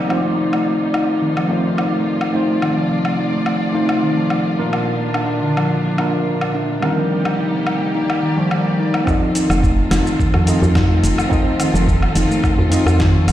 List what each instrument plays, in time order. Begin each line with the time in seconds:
Already playing: string section C3 D#4, tine electric piano G3 A#3 C4 D#4 C5, synth texture D5
0.08 steel tongue drum F3, string section F3 F4, tine electric piano A3 C4 D#4 F4, low woodblock
0.12 tine electric piano C5
0.25 steel tongue drum F3
0.38 steel tongue drum D#4
0.52 steel tongue drum A3, low woodblock
0.94 steel tongue drum D#4, low woodblock
1.22 steel tongue drum D#3
1.37 steel tongue drum F3, low woodblock
1.48 steel tongue drum F3, tine electric piano A3 C4 D#4 F4 C5
1.65 steel tongue drum F3
1.78 steel tongue drum D#4, low woodblock
1.93 steel tongue drum A3
2.21 low woodblock
2.32 tine electric piano A3 C4 D#4 F4, steel tongue drum D#4, string section D5
2.36 tine electric piano C5
2.62 steel tongue drum D#3, low woodblock
2.77 steel tongue drum F3
2.91 steel tongue drum F3
3.05 steel tongue drum F3, low woodblock
3.19 steel tongue drum D#4
3.33 steel tongue drum A3
3.46 low woodblock
3.72 tine electric piano A3 C4 D#4 F4, steel tongue drum D#4
3.76 tine electric piano C5
3.89 low woodblock
4.03 steel tongue drum D#3
4.17 steel tongue drum F3
4.30 steel tongue drum F3, low woodblock
4.45 steel tongue drum F3
4.57 string section A#2 D4, tine electric piano A#3 D4 F4 A#4, steel tongue drum D4
4.73 steel tongue drum A#3, low woodblock
5.14 steel tongue drum D4, low woodblock
5.42 steel tongue drum D3
5.57 steel tongue drum F3, low woodblock
5.70 steel tongue drum F3
5.85 steel tongue drum F3
5.97 tine electric piano A#3 D4 F4 A#4, steel tongue drum D4, low woodblock
6.14 steel tongue drum A#3
6.41 low woodblock
6.55 steel tongue drum D4
6.81 string section C3 G3 A#3 D#4 G4, steel tongue drum D#3, tine electric piano G3 A#3 C4 D#4 A#4, low woodblock
6.97 steel tongue drum F3
7.11 steel tongue drum F3
7.25 steel tongue drum F3, low woodblock
7.39 steel tongue drum D#4
7.53 steel tongue drum A#3
7.67 low woodblock
7.95 string section D#3 G3 D5, steel tongue drum D#4
8.10 low woodblock
8.23 steel tongue drum D#3
8.36 steel tongue drum F3, tine electric piano G3 A#3 D#4 D5
8.40 tine electric piano C5
8.51 steel tongue drum F3, low woodblock
8.66 steel tongue drum F3
8.79 steel tongue drum D#4
8.94 steel tongue drum A#3, low woodblock
9.05 string section D#3 F3 C4 F4 A4, steel tongue drum F3, tine electric piano C4 D#4 F4 A4, kick, low woodblock, shaker
9.09 tine electric piano D#5
9.22 steel tongue drum F3
9.35 steel tongue drum D#4, closed hi-hat, shaker
9.50 fm bass F1, steel tongue drum A3, low woodblock, shaker
9.63 kick, shaker
9.91 fm bass F1, steel tongue drum D#4, snare, closed hi-hat, low woodblock, shaker
10.07 shaker
10.19 steel tongue drum D#3, kick, shaker
10.34 fm bass F2, steel tongue drum F3, low woodblock
10.45 steel tongue drum F3, tine electric piano C4 D#4 F4 A4 D#5, closed hi-hat, shaker
10.62 fm bass F2, steel tongue drum F3, shaker
10.75 steel tongue drum D#4, kick, snare, low woodblock, shaker
10.90 steel tongue drum A3
11.03 fm bass F1, closed hi-hat, shaker
11.18 low woodblock, shaker
11.29 tine electric piano C4 D#4 F4 A4, steel tongue drum D#4, kick, shaker
11.33 tine electric piano D#5
11.60 steel tongue drum D#3, closed hi-hat, low woodblock, shaker
11.74 fm bass F1, steel tongue drum F3, shaker
11.88 steel tongue drum F3, kick, shaker
12.02 steel tongue drum F3, low woodblock
12.15 fm bass F1, steel tongue drum D#4, closed hi-hat, shaker
12.31 steel tongue drum A3, shaker
12.44 kick, low woodblock, shaker
12.58 fm bass F2
12.70 tine electric piano C4 D#4 F4 A4, steel tongue drum D#4, closed hi-hat, shaker
12.74 tine electric piano D#5
12.86 fm bass F2, low woodblock, shaker
13.00 steel tongue drum D#3, kick, snare, shaker
13.14 steel tongue drum F3
13.27 fm bass F1, steel tongue drum F3, closed hi-hat, low woodblock, shaker